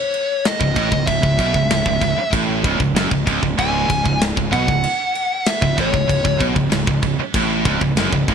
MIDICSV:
0, 0, Header, 1, 7, 480
1, 0, Start_track
1, 0, Key_signature, 4, "minor"
1, 0, Tempo, 626305
1, 826, Time_signature, 4, 2, 24, 8
1, 6396, End_track
2, 0, Start_track
2, 0, Title_t, "Lead electric guitar"
2, 0, Program_c, 0, 29
2, 0, Note_on_c, 0, 73, 93
2, 358, Note_off_c, 0, 73, 0
2, 361, Note_on_c, 0, 75, 100
2, 817, Note_off_c, 0, 75, 0
2, 820, Note_on_c, 0, 76, 99
2, 1754, Note_off_c, 0, 76, 0
2, 2754, Note_on_c, 0, 80, 104
2, 3201, Note_off_c, 0, 80, 0
2, 3468, Note_on_c, 0, 78, 108
2, 4189, Note_on_c, 0, 76, 97
2, 4211, Note_off_c, 0, 78, 0
2, 4437, Note_off_c, 0, 76, 0
2, 4450, Note_on_c, 0, 73, 90
2, 4889, Note_off_c, 0, 73, 0
2, 6396, End_track
3, 0, Start_track
3, 0, Title_t, "Distorted electric guitar"
3, 0, Program_c, 1, 30
3, 470, Note_on_c, 1, 37, 84
3, 587, Note_off_c, 1, 37, 0
3, 590, Note_on_c, 1, 45, 109
3, 701, Note_off_c, 1, 45, 0
3, 712, Note_on_c, 1, 37, 70
3, 822, Note_off_c, 1, 37, 0
3, 831, Note_on_c, 1, 37, 79
3, 938, Note_off_c, 1, 37, 0
3, 947, Note_on_c, 1, 37, 77
3, 1067, Note_off_c, 1, 37, 0
3, 1070, Note_on_c, 1, 47, 109
3, 1181, Note_off_c, 1, 47, 0
3, 1184, Note_on_c, 1, 37, 70
3, 1306, Note_off_c, 1, 37, 0
3, 1316, Note_on_c, 1, 37, 68
3, 1419, Note_off_c, 1, 37, 0
3, 1429, Note_on_c, 1, 37, 77
3, 1530, Note_off_c, 1, 37, 0
3, 1539, Note_on_c, 1, 37, 72
3, 1653, Note_off_c, 1, 37, 0
3, 1771, Note_on_c, 1, 45, 105
3, 2013, Note_off_c, 1, 45, 0
3, 2023, Note_on_c, 1, 37, 98
3, 2135, Note_off_c, 1, 37, 0
3, 2144, Note_on_c, 1, 37, 72
3, 2266, Note_off_c, 1, 37, 0
3, 2270, Note_on_c, 1, 42, 104
3, 2381, Note_off_c, 1, 42, 0
3, 2384, Note_on_c, 1, 37, 78
3, 2492, Note_off_c, 1, 37, 0
3, 2501, Note_on_c, 1, 37, 92
3, 2615, Note_off_c, 1, 37, 0
3, 2624, Note_on_c, 1, 37, 68
3, 2732, Note_off_c, 1, 37, 0
3, 2741, Note_on_c, 1, 37, 98
3, 2978, Note_off_c, 1, 37, 0
3, 2986, Note_on_c, 1, 37, 74
3, 3098, Note_off_c, 1, 37, 0
3, 3107, Note_on_c, 1, 37, 73
3, 3301, Note_off_c, 1, 37, 0
3, 3347, Note_on_c, 1, 37, 72
3, 3454, Note_off_c, 1, 37, 0
3, 3457, Note_on_c, 1, 47, 86
3, 3577, Note_off_c, 1, 47, 0
3, 3587, Note_on_c, 1, 37, 77
3, 3709, Note_off_c, 1, 37, 0
3, 4312, Note_on_c, 1, 37, 81
3, 4428, Note_off_c, 1, 37, 0
3, 4431, Note_on_c, 1, 45, 98
3, 4536, Note_off_c, 1, 45, 0
3, 4540, Note_on_c, 1, 37, 70
3, 4646, Note_off_c, 1, 37, 0
3, 4656, Note_on_c, 1, 37, 82
3, 4780, Note_off_c, 1, 37, 0
3, 4789, Note_on_c, 1, 37, 79
3, 4905, Note_off_c, 1, 37, 0
3, 4908, Note_on_c, 1, 47, 93
3, 5022, Note_off_c, 1, 47, 0
3, 5025, Note_on_c, 1, 37, 77
3, 5123, Note_off_c, 1, 37, 0
3, 5132, Note_on_c, 1, 37, 81
3, 5252, Note_off_c, 1, 37, 0
3, 5261, Note_on_c, 1, 37, 74
3, 5371, Note_off_c, 1, 37, 0
3, 5381, Note_on_c, 1, 37, 74
3, 5502, Note_off_c, 1, 37, 0
3, 5639, Note_on_c, 1, 45, 97
3, 5866, Note_off_c, 1, 45, 0
3, 5875, Note_on_c, 1, 37, 113
3, 5980, Note_off_c, 1, 37, 0
3, 5989, Note_on_c, 1, 37, 74
3, 6108, Note_off_c, 1, 37, 0
3, 6115, Note_on_c, 1, 42, 107
3, 6224, Note_off_c, 1, 42, 0
3, 6232, Note_on_c, 1, 37, 78
3, 6339, Note_off_c, 1, 37, 0
3, 6348, Note_on_c, 1, 37, 91
3, 6396, Note_off_c, 1, 37, 0
3, 6396, End_track
4, 0, Start_track
4, 0, Title_t, "Fingered electric bass"
4, 0, Program_c, 2, 33
4, 465, Note_on_c, 2, 25, 69
4, 577, Note_off_c, 2, 25, 0
4, 585, Note_on_c, 2, 33, 104
4, 697, Note_off_c, 2, 33, 0
4, 706, Note_on_c, 2, 25, 73
4, 818, Note_off_c, 2, 25, 0
4, 823, Note_on_c, 2, 25, 81
4, 936, Note_off_c, 2, 25, 0
4, 944, Note_on_c, 2, 25, 80
4, 1057, Note_off_c, 2, 25, 0
4, 1060, Note_on_c, 2, 35, 100
4, 1175, Note_off_c, 2, 35, 0
4, 1184, Note_on_c, 2, 25, 86
4, 1291, Note_off_c, 2, 25, 0
4, 1296, Note_on_c, 2, 25, 85
4, 1413, Note_off_c, 2, 25, 0
4, 1427, Note_on_c, 2, 25, 82
4, 1539, Note_off_c, 2, 25, 0
4, 1549, Note_on_c, 2, 25, 84
4, 1660, Note_off_c, 2, 25, 0
4, 1783, Note_on_c, 2, 33, 80
4, 2009, Note_off_c, 2, 33, 0
4, 2022, Note_on_c, 2, 25, 97
4, 2137, Note_off_c, 2, 25, 0
4, 2142, Note_on_c, 2, 25, 78
4, 2249, Note_off_c, 2, 25, 0
4, 2253, Note_on_c, 2, 30, 92
4, 2372, Note_off_c, 2, 30, 0
4, 2390, Note_on_c, 2, 25, 74
4, 2501, Note_off_c, 2, 25, 0
4, 2510, Note_on_c, 2, 25, 84
4, 2621, Note_off_c, 2, 25, 0
4, 2628, Note_on_c, 2, 25, 81
4, 2740, Note_off_c, 2, 25, 0
4, 2751, Note_on_c, 2, 25, 87
4, 2974, Note_off_c, 2, 25, 0
4, 2989, Note_on_c, 2, 25, 77
4, 3101, Note_off_c, 2, 25, 0
4, 3113, Note_on_c, 2, 25, 81
4, 3335, Note_off_c, 2, 25, 0
4, 3350, Note_on_c, 2, 25, 79
4, 3462, Note_off_c, 2, 25, 0
4, 3471, Note_on_c, 2, 35, 102
4, 3583, Note_off_c, 2, 35, 0
4, 3586, Note_on_c, 2, 25, 86
4, 3700, Note_off_c, 2, 25, 0
4, 4307, Note_on_c, 2, 25, 81
4, 4420, Note_off_c, 2, 25, 0
4, 4431, Note_on_c, 2, 33, 106
4, 4542, Note_off_c, 2, 33, 0
4, 4547, Note_on_c, 2, 25, 81
4, 4660, Note_off_c, 2, 25, 0
4, 4670, Note_on_c, 2, 25, 77
4, 4782, Note_off_c, 2, 25, 0
4, 4790, Note_on_c, 2, 25, 77
4, 4902, Note_off_c, 2, 25, 0
4, 4913, Note_on_c, 2, 35, 105
4, 5023, Note_off_c, 2, 35, 0
4, 5027, Note_on_c, 2, 25, 81
4, 5140, Note_off_c, 2, 25, 0
4, 5153, Note_on_c, 2, 25, 80
4, 5263, Note_off_c, 2, 25, 0
4, 5266, Note_on_c, 2, 25, 81
4, 5380, Note_off_c, 2, 25, 0
4, 5385, Note_on_c, 2, 25, 71
4, 5499, Note_off_c, 2, 25, 0
4, 5629, Note_on_c, 2, 33, 87
4, 5852, Note_off_c, 2, 33, 0
4, 5870, Note_on_c, 2, 25, 93
4, 5981, Note_off_c, 2, 25, 0
4, 5989, Note_on_c, 2, 25, 84
4, 6093, Note_off_c, 2, 25, 0
4, 6097, Note_on_c, 2, 30, 102
4, 6214, Note_off_c, 2, 30, 0
4, 6229, Note_on_c, 2, 25, 82
4, 6340, Note_off_c, 2, 25, 0
4, 6347, Note_on_c, 2, 25, 107
4, 6396, Note_off_c, 2, 25, 0
4, 6396, End_track
5, 0, Start_track
5, 0, Title_t, "Muted distorted electric guitar strokes"
5, 1662, Note_on_c, 9, 29, 63
5, 1739, Note_off_c, 9, 29, 0
5, 5512, Note_on_c, 9, 29, 57
5, 5588, Note_off_c, 9, 29, 0
5, 6396, End_track
6, 0, Start_track
6, 0, Title_t, "Muted fingered electric bass strokes"
6, 1669, Note_on_c, 9, 29, 44
6, 1746, Note_off_c, 9, 29, 0
6, 5512, Note_on_c, 9, 29, 39
6, 5588, Note_off_c, 9, 29, 0
6, 6396, End_track
7, 0, Start_track
7, 0, Title_t, "Drums"
7, 105, Note_on_c, 9, 49, 64
7, 182, Note_off_c, 9, 49, 0
7, 345, Note_on_c, 9, 49, 82
7, 348, Note_on_c, 9, 38, 122
7, 422, Note_off_c, 9, 49, 0
7, 425, Note_off_c, 9, 38, 0
7, 465, Note_on_c, 9, 36, 88
7, 541, Note_off_c, 9, 36, 0
7, 584, Note_on_c, 9, 36, 87
7, 587, Note_on_c, 9, 49, 66
7, 660, Note_off_c, 9, 36, 0
7, 663, Note_off_c, 9, 49, 0
7, 704, Note_on_c, 9, 36, 92
7, 781, Note_off_c, 9, 36, 0
7, 823, Note_on_c, 9, 36, 84
7, 826, Note_on_c, 9, 49, 77
7, 900, Note_off_c, 9, 36, 0
7, 903, Note_off_c, 9, 49, 0
7, 945, Note_on_c, 9, 36, 83
7, 1022, Note_off_c, 9, 36, 0
7, 1064, Note_on_c, 9, 36, 94
7, 1070, Note_on_c, 9, 49, 65
7, 1140, Note_off_c, 9, 36, 0
7, 1147, Note_off_c, 9, 49, 0
7, 1183, Note_on_c, 9, 36, 82
7, 1259, Note_off_c, 9, 36, 0
7, 1306, Note_on_c, 9, 49, 80
7, 1309, Note_on_c, 9, 38, 109
7, 1383, Note_off_c, 9, 49, 0
7, 1386, Note_off_c, 9, 38, 0
7, 1424, Note_on_c, 9, 36, 92
7, 1500, Note_off_c, 9, 36, 0
7, 1544, Note_on_c, 9, 36, 78
7, 1547, Note_on_c, 9, 49, 64
7, 1621, Note_off_c, 9, 36, 0
7, 1624, Note_off_c, 9, 49, 0
7, 1785, Note_on_c, 9, 36, 103
7, 1788, Note_on_c, 9, 49, 83
7, 1861, Note_off_c, 9, 36, 0
7, 1864, Note_off_c, 9, 49, 0
7, 2026, Note_on_c, 9, 36, 103
7, 2031, Note_on_c, 9, 49, 62
7, 2103, Note_off_c, 9, 36, 0
7, 2108, Note_off_c, 9, 49, 0
7, 2146, Note_on_c, 9, 36, 91
7, 2223, Note_off_c, 9, 36, 0
7, 2269, Note_on_c, 9, 49, 78
7, 2272, Note_on_c, 9, 38, 116
7, 2346, Note_off_c, 9, 49, 0
7, 2349, Note_off_c, 9, 38, 0
7, 2386, Note_on_c, 9, 36, 85
7, 2463, Note_off_c, 9, 36, 0
7, 2507, Note_on_c, 9, 36, 101
7, 2511, Note_on_c, 9, 49, 63
7, 2583, Note_off_c, 9, 36, 0
7, 2588, Note_off_c, 9, 49, 0
7, 2627, Note_on_c, 9, 36, 85
7, 2704, Note_off_c, 9, 36, 0
7, 2748, Note_on_c, 9, 36, 80
7, 2748, Note_on_c, 9, 49, 67
7, 2825, Note_off_c, 9, 36, 0
7, 2825, Note_off_c, 9, 49, 0
7, 2987, Note_on_c, 9, 36, 95
7, 2987, Note_on_c, 9, 49, 65
7, 3063, Note_off_c, 9, 49, 0
7, 3064, Note_off_c, 9, 36, 0
7, 3108, Note_on_c, 9, 36, 82
7, 3185, Note_off_c, 9, 36, 0
7, 3229, Note_on_c, 9, 49, 81
7, 3232, Note_on_c, 9, 38, 110
7, 3305, Note_off_c, 9, 49, 0
7, 3308, Note_off_c, 9, 38, 0
7, 3350, Note_on_c, 9, 36, 96
7, 3427, Note_off_c, 9, 36, 0
7, 3470, Note_on_c, 9, 36, 84
7, 3474, Note_on_c, 9, 49, 62
7, 3547, Note_off_c, 9, 36, 0
7, 3551, Note_off_c, 9, 49, 0
7, 3589, Note_on_c, 9, 36, 85
7, 3666, Note_off_c, 9, 36, 0
7, 3705, Note_on_c, 9, 49, 89
7, 3782, Note_off_c, 9, 49, 0
7, 3948, Note_on_c, 9, 49, 63
7, 4025, Note_off_c, 9, 49, 0
7, 4185, Note_on_c, 9, 49, 84
7, 4189, Note_on_c, 9, 38, 121
7, 4262, Note_off_c, 9, 49, 0
7, 4265, Note_off_c, 9, 38, 0
7, 4308, Note_on_c, 9, 36, 83
7, 4385, Note_off_c, 9, 36, 0
7, 4429, Note_on_c, 9, 36, 97
7, 4431, Note_on_c, 9, 49, 65
7, 4506, Note_off_c, 9, 36, 0
7, 4508, Note_off_c, 9, 49, 0
7, 4550, Note_on_c, 9, 36, 85
7, 4627, Note_off_c, 9, 36, 0
7, 4671, Note_on_c, 9, 36, 87
7, 4676, Note_on_c, 9, 49, 72
7, 4747, Note_off_c, 9, 36, 0
7, 4752, Note_off_c, 9, 49, 0
7, 4789, Note_on_c, 9, 36, 100
7, 4866, Note_off_c, 9, 36, 0
7, 4909, Note_on_c, 9, 36, 100
7, 4912, Note_on_c, 9, 49, 67
7, 4985, Note_off_c, 9, 36, 0
7, 4989, Note_off_c, 9, 49, 0
7, 5028, Note_on_c, 9, 36, 83
7, 5105, Note_off_c, 9, 36, 0
7, 5147, Note_on_c, 9, 49, 85
7, 5150, Note_on_c, 9, 38, 109
7, 5224, Note_off_c, 9, 49, 0
7, 5227, Note_off_c, 9, 38, 0
7, 5268, Note_on_c, 9, 36, 108
7, 5344, Note_off_c, 9, 36, 0
7, 5384, Note_on_c, 9, 49, 64
7, 5386, Note_on_c, 9, 36, 87
7, 5461, Note_off_c, 9, 49, 0
7, 5463, Note_off_c, 9, 36, 0
7, 5627, Note_on_c, 9, 36, 110
7, 5628, Note_on_c, 9, 49, 87
7, 5703, Note_off_c, 9, 36, 0
7, 5704, Note_off_c, 9, 49, 0
7, 5863, Note_on_c, 9, 49, 61
7, 5866, Note_on_c, 9, 36, 102
7, 5940, Note_off_c, 9, 49, 0
7, 5942, Note_off_c, 9, 36, 0
7, 5988, Note_on_c, 9, 36, 88
7, 6064, Note_off_c, 9, 36, 0
7, 6106, Note_on_c, 9, 49, 81
7, 6109, Note_on_c, 9, 38, 108
7, 6183, Note_off_c, 9, 49, 0
7, 6186, Note_off_c, 9, 38, 0
7, 6227, Note_on_c, 9, 36, 87
7, 6304, Note_off_c, 9, 36, 0
7, 6347, Note_on_c, 9, 36, 94
7, 6347, Note_on_c, 9, 49, 68
7, 6396, Note_off_c, 9, 36, 0
7, 6396, Note_off_c, 9, 49, 0
7, 6396, End_track
0, 0, End_of_file